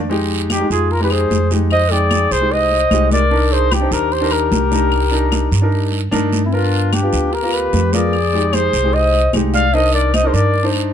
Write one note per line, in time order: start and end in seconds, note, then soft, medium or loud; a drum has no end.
0.00 0.64 F2 medium
0.09 0.45 G#3 medium
0.09 0.45 D#4 medium
0.09 0.46 G4 loud
0.09 high conga soft
0.09 long guiro medium
0.30 high conga soft
0.50 0.69 D#4 medium
0.50 0.70 G4 medium
0.50 high conga medium
0.50 short guiro medium
0.50 claves medium
0.60 0.88 G#3 medium
0.60 0.89 D#4 medium
0.60 0.89 G4 medium
0.70 1.27 F2 medium
0.70 0.90 F4 medium
0.70 0.93 G#4 medium
0.70 high conga soft
0.70 short guiro medium
0.90 1.03 F4 medium
0.90 1.03 A#4 medium
0.90 high conga soft
0.90 long guiro medium
1.00 1.35 G#3 medium
1.00 1.36 D#4 medium
1.00 1.36 G4 medium
1.00 1.12 G4 medium
1.00 1.13 B4 medium
1.11 1.51 G#4 medium
1.11 1.51 C5 loud
1.11 high conga soft
1.11 claves medium
1.30 2.25 F2 medium
1.30 high conga medium
1.30 short guiro medium
1.50 1.79 G#3 medium
1.50 1.79 D#4 medium
1.50 1.79 G4 medium
1.50 high conga medium
1.50 short guiro medium
1.71 1.93 C5 medium
1.71 1.93 D#5 loud
1.71 high conga soft
1.71 long guiro medium
1.71 claves medium
1.90 2.26 G#3 medium
1.90 2.26 D#4 medium
1.90 2.32 G#4 medium
1.90 2.33 D5 loud
1.90 2.26 G5 medium
1.90 high conga soft
2.11 high conga medium
2.11 short guiro medium
2.11 claves medium
2.31 2.87 C2 medium
2.31 2.53 G#4 medium
2.31 2.53 C5 loud
2.31 high conga soft
2.31 short guiro medium
2.40 2.76 G#3 medium
2.40 2.76 D#4 medium
2.40 2.77 G4 medium
2.51 3.11 C5 medium
2.51 3.12 D#5 loud
2.51 high conga soft
2.51 long guiro medium
2.71 high conga soft
2.90 3.85 C2 medium
2.90 3.19 G#3 medium
2.90 3.19 D#4 medium
2.90 3.20 G4 medium
2.90 high conga medium
2.90 short guiro medium
2.90 claves medium
3.11 3.53 A#4 medium
3.11 3.54 D5 loud
3.11 high conga medium
3.11 short guiro medium
3.31 3.66 D4 medium
3.31 3.66 D#4 medium
3.31 3.67 A#4 medium
3.31 high conga soft
3.31 long guiro medium
3.52 3.73 G#4 medium
3.52 3.75 C5 medium
3.52 high conga soft
3.71 3.77 F4 medium
3.71 3.94 G4 medium
3.71 high conga medium
3.71 short guiro medium
3.71 claves medium
3.76 3.93 D#4 medium
3.80 4.09 D4 medium
3.80 4.10 D#4 medium
3.80 4.10 C5 medium
3.91 4.48 D#2 medium
3.91 4.12 G4 medium
3.91 4.14 A#4 medium
3.91 high conga soft
3.91 short guiro medium
4.12 4.33 G4 medium
4.12 4.33 C5 medium
4.12 high conga soft
4.12 long guiro medium
4.21 4.56 D4 medium
4.21 4.57 D#4 medium
4.21 4.57 A#4 medium
4.31 5.93 G4 medium
4.31 5.92 A#4 medium
4.31 high conga soft
4.31 claves medium
4.51 5.46 C2 medium
4.51 high conga medium
4.51 short guiro medium
4.71 4.99 D4 medium
4.71 5.00 D#4 medium
4.71 5.00 A#4 medium
4.71 high conga medium
4.71 short guiro medium
4.92 high conga soft
4.92 long guiro medium
4.92 claves medium
5.11 5.47 D4 medium
5.11 5.47 D#4 medium
5.11 5.47 A#4 medium
5.11 high conga soft
5.32 high conga medium
5.32 short guiro medium
5.32 claves medium
5.52 6.08 G2 medium
5.52 high conga soft
5.52 short guiro medium
5.61 5.97 D4 medium
5.61 5.97 D#4 medium
5.61 5.98 A#4 medium
5.72 high conga soft
5.72 long guiro medium
5.92 high conga soft
6.11 7.07 G2 medium
6.11 6.40 D4 loud
6.11 6.40 D#4 medium
6.11 6.41 A#4 loud
6.11 high conga medium
6.11 short guiro medium
6.11 claves medium
6.33 high conga medium
6.33 short guiro medium
6.45 6.54 C4 soft
6.45 6.55 E4 medium
6.52 6.87 B3 medium
6.52 6.93 D4 medium
6.52 6.88 F4 medium
6.52 6.95 F4 medium
6.52 6.88 A#4 medium
6.52 high conga soft
6.52 long guiro medium
6.73 high conga soft
6.93 7.34 D4 medium
6.93 7.35 G4 medium
6.93 high conga medium
6.93 short guiro medium
6.93 claves medium
7.02 7.31 B3 medium
7.02 7.31 F4 medium
7.02 7.31 G4 medium
7.13 7.69 D2 medium
7.13 high conga soft
7.13 short guiro medium
7.32 7.53 G4 medium
7.32 7.55 A#4 medium
7.32 high conga soft
7.32 long guiro medium
7.42 7.78 B3 medium
7.42 7.78 F4 medium
7.42 7.78 A#4 medium
7.53 7.95 G4 medium
7.53 7.95 B4 medium
7.53 high conga soft
7.53 claves medium
7.73 8.67 F2 medium
7.73 high conga medium
7.73 short guiro medium
7.92 8.13 B3 medium
7.92 8.13 F4 medium
7.92 8.54 G#4 medium
7.92 8.14 A#4 medium
7.92 8.55 D5 loud
7.92 high conga medium
7.92 short guiro medium
8.13 high conga soft
8.13 long guiro medium
8.13 claves medium
8.33 8.68 G#3 medium
8.33 8.69 D#4 medium
8.33 8.69 G4 medium
8.33 high conga soft
8.53 8.95 G#4 medium
8.53 8.95 C5 loud
8.53 high conga medium
8.53 short guiro medium
8.53 claves medium
8.73 9.29 C2 loud
8.73 high conga soft
8.73 short guiro medium
8.83 9.18 G#3 medium
8.83 9.18 D#4 medium
8.83 9.19 G4 medium
8.93 9.34 C5 medium
8.93 9.34 D#5 medium
8.93 high conga soft
8.93 long guiro medium
9.13 high conga soft
9.33 10.28 C2 medium
9.33 9.61 G#3 medium
9.33 9.62 D#4 medium
9.33 9.62 G4 medium
9.33 high conga medium
9.33 short guiro medium
9.33 claves medium
9.54 9.75 D5 medium
9.54 9.75 F5 loud
9.54 high conga medium
9.54 short guiro medium
9.73 10.09 D4 medium
9.73 10.09 D#4 medium
9.73 10.09 A#4 medium
9.73 9.93 C5 medium
9.73 9.93 D#5 loud
9.73 high conga soft
9.73 long guiro medium
9.93 10.15 A#4 medium
9.93 10.16 D5 loud
9.93 high conga soft
10.14 10.29 C5 medium
10.14 10.29 D#5 loud
10.14 high conga medium
10.14 short guiro medium
10.14 claves medium
10.23 10.51 D4 medium
10.23 10.52 D#4 medium
10.23 10.52 A#4 medium
10.27 10.36 G#4 medium
10.27 10.35 C5 medium
10.33 10.90 G2 medium
10.33 10.67 A#4 medium
10.33 10.67 D5 loud
10.33 high conga soft
10.33 short guiro medium
10.54 high conga soft
10.54 long guiro medium
10.63 10.93 D4 medium
10.63 10.93 D#4 medium
10.63 10.93 C5 medium
10.74 high conga soft
10.74 claves medium